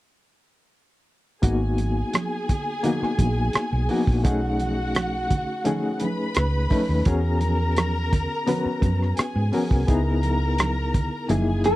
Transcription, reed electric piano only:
1.42 A#3 B3 D#4 F#4
2.83 A#3 B3 D#4 F#4
3.89 A#3 B3 D#4 F#4
4.24 A3 C#4 D#4 G#4
5.65 A3 C#4 D#4 G#4
6.70 A3 C#4 D#4 B4
7.06 B3 C#4 F#4 G#4
8.47 B3 C#4 F#4 B4
9.52 B3 C#4 F#4 A#4
9.87 B3 D#4 E4 G#4
11.29 A#3 D#4 E4 G#4

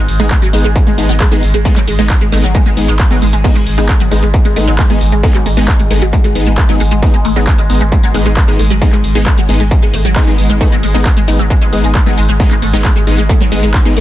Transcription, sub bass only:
0.08 G#1
0.20 G#1
0.42 G#1
0.53 G#1
0.64 G#1
0.87 G#1
0.98 G#1
1.09 G#1
1.32 G#1
1.43 G#1
1.54 G#1
1.77 G#1
1.88 G#1
1.99 G#1
2.21 G#1
2.32 G#1
2.44 G#1
2.66 G#1
2.77 G#1
2.88 G#1
3.11 G#1
3.22 G#1
3.33 G#1
3.56 G#1
3.67 G#1
3.78 G#1
4.00 G#1
4.12 G#1
4.23 G#1
4.45 G#1
4.56 G#1
4.67 G#1
4.90 G#1
5.01 G#1
5.12 G#1
5.35 G#1
5.46 G#1
5.57 G#1
5.79 G#1
5.91 G#1
6.02 G#1
6.24 G#1
6.35 G#1
6.47 G#1
6.69 G#1
6.80 G#1
6.91 G#1
7.14 G#1
7.25 G#1
7.36 G#1
7.59 G#1
7.70 G#1
7.81 G#1
8.03 G#1
8.14 G#1
8.26 G#1
8.48 G#1
8.59 G#1
8.71 G#1
8.93 G#1
9.04 G#1
9.15 G#1
9.38 G#1
9.49 G#1
9.60 G#1
9.83 G#1
9.94 G#1
10.05 G#1
10.27 G#1
10.38 G#1
10.50 G#1
10.72 G#1
10.83 G#1
10.94 G#1
11.17 G#1
11.28 G#1
11.39 G#1
11.62 G#1
11.73 G#1
11.84 G#1
12.06 G#1
12.18 G#1
12.29 G#1
12.51 G#1
12.62 G#1
12.73 G#1
12.96 G#1
13.07 G#1
13.18 G#1
13.41 G#1
13.52 G#1
13.63 G#1
13.85 G#1
13.97 G#1

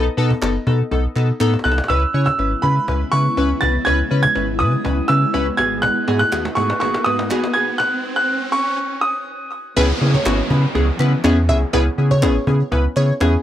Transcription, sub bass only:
0.18 B2
0.42 F#1
0.67 B2
0.92 B1
1.16 B2
1.40 A2
1.65 C2
1.90 C#2
2.14 C#3
2.39 G#1
2.63 C#3
2.88 C#2
3.13 C#3
3.37 C#2
3.62 C2
3.86 C#2
4.11 C#3
4.36 G#1
4.60 C#3
4.85 C#2
5.09 C#3
5.34 C#2
5.59 G#1
6.08 G#2
6.32 D#2
6.57 G#2
6.82 G#1
7.06 G#2
7.31 G#1
7.55 G1
9.77 C#2
10.01 C#3
10.26 G#1
10.50 C#3
10.75 C#2
10.99 C#3
11.24 E2
11.49 C2
11.74 C#2
11.98 C#3
12.23 G#1
12.47 C#3
12.72 C#2
12.96 C#3
13.21 E2

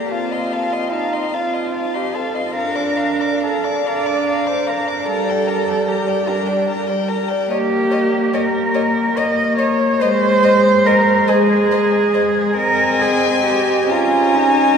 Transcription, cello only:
Already playing: G4
0.12 F4
0.93 D#4
1.33 F4
1.95 G4
2.15 A4
2.56 A#4
3.43 A4
3.87 D5
4.49 C5
4.69 A#4
5.08 A4
5.88 G4
6.29 D4
7.51 G4
8.34 A#4
9.17 D#5
9.59 C#5
10.00 C5
10.86 A#4
11.29 G#4
12.57 A#4
13.00 G#4
13.44 G4
13.90 F4
14.37 D#4

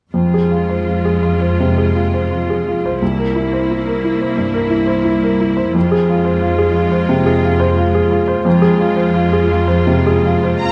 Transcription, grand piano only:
0.14 F2
0.34 G#4
0.51 F4
0.69 C5
0.87 F4
1.05 G#4
1.23 F4
1.41 C5
1.60 C3
1.78 G#4
1.95 F4
2.14 C5
2.31 F4
2.50 G#4
2.68 F4
2.86 C5
3.02 C2
3.18 A#4
3.36 E4
3.53 C5
3.71 E4
3.87 A#4
4.04 E4
4.21 C5
4.38 G2
4.54 A#4
4.70 E4
4.87 C5
5.05 E4
5.23 A#4
5.40 E4
5.57 C5
5.75 F2
5.92 G#4
6.09 F4
6.25 C5
6.41 F4
6.58 G#4
6.74 F4
6.92 C5
7.09 C3
7.26 G#4
7.44 F4
7.60 C5
7.78 F4
7.95 G#4
8.11 F4
8.28 C5
8.45 F2
8.62 G#4
8.80 F4
8.97 C5
9.14 F4
9.33 G#4
9.51 F4
9.68 C5
9.87 C3
10.06 G#4
10.25 F4
10.43 C5
10.63 F4

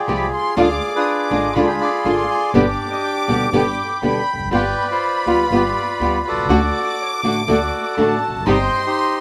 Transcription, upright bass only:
0.08 C2
0.57 D2
1.31 G#1
1.56 D2
2.05 G#1
2.54 G1
3.28 D2
3.53 G1
4.02 D2
4.33 E1
4.39 F1
4.45 F#1
4.52 G1
5.26 D2
5.51 G1
6.00 D2
6.31 B1
6.37 C2
6.43 C#2
6.49 D2
7.23 A1
7.48 D2
7.98 A1
8.28 E1
8.35 F1
8.41 F#1
8.47 G1

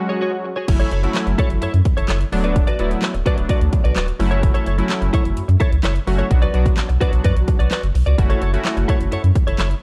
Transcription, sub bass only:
0.68 F#1
0.92 F#1
1.27 F#1
1.50 F#1
1.62 F#2
1.74 F#2
1.97 F#1
2.09 F#1
2.32 D1
2.79 D1
3.14 D1
3.38 D1
3.49 D2
3.61 D2
3.84 B1
3.96 D1
4.20 F#1
4.67 F#1
5.02 F#1
5.25 F#1
5.37 F#2
5.49 F#2
5.72 C#2
5.84 F#1
6.07 F#1
6.31 B1
6.54 B1
6.89 B1
7.13 B1
7.24 F#2
7.36 B1
7.60 B1
7.83 F#1
7.95 B1
8.07 C#2
8.18 F#1
8.42 F#1
8.77 F#1
9.00 F#1
9.12 F#2
9.24 F#2
9.47 F#1
9.59 F#1

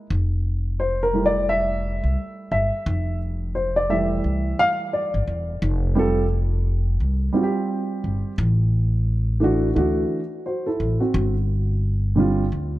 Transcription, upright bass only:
0.10 F1
2.04 C2
2.51 G1
2.86 F1
4.24 C2
5.14 G1
5.28 E1
5.62 F1
7.00 C2
8.04 G1
8.38 A1
9.76 D2
10.80 A1
11.14 G1
12.52 D2

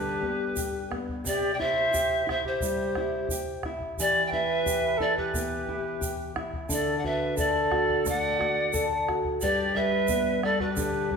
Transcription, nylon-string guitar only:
Already playing: G2 D3
0.22 B3
0.56 G4
0.91 B3
1.24 C3
1.59 E4
1.94 G4
2.27 E4
2.62 G3
2.97 E4
3.31 G4
3.65 E4
4.00 E3
4.33 E4
4.66 G4
5.00 E4
5.34 B3
5.68 E4
6.01 G4
6.36 E4
6.69 D3
7.04 F#4
7.37 A4
7.71 F#4
8.05 A3
8.39 F#4
8.73 A4
9.08 F#4
9.42 G2
9.75 G3
10.09 B3
10.44 G3
10.76 D3
11.11 G3

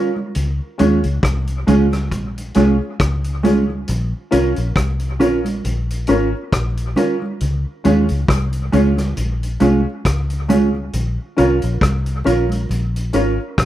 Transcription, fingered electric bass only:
0.36 C#2
0.80 D#2
1.05 C#2
1.23 C2
1.68 C#2
2.12 A#1
2.56 C2
3.00 C#2
3.89 A#1
4.33 C2
4.58 A#1
4.76 C2
5.21 A#1
5.65 A#1
6.09 G#1
6.53 A#1
7.41 C#2
7.85 D#2
8.11 C#2
8.29 C2
8.74 C#2
9.18 A#1
9.62 C2
10.06 C#2
10.94 A#1
11.39 C2
11.64 A#1
11.82 C2
12.27 A#1
12.70 A#1
13.15 G#1
13.59 A#1

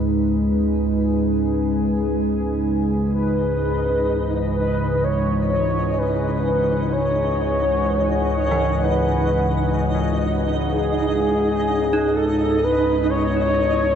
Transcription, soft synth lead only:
3.11 B4
4.54 B4
5.04 C#5
5.50 C#5
5.98 B4
6.92 C#5
8.34 C#5
8.83 B4
10.72 G#4
12.16 A4
12.64 B4
13.10 C#5

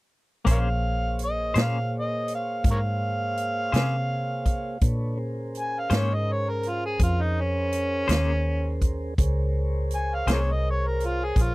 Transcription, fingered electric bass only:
0.47 A#1
1.56 A#2
2.65 G#2
3.73 C3
4.82 A#2
5.91 G#2
6.99 F2
8.09 D#2
9.18 C#2
10.27 C2
11.36 A#1

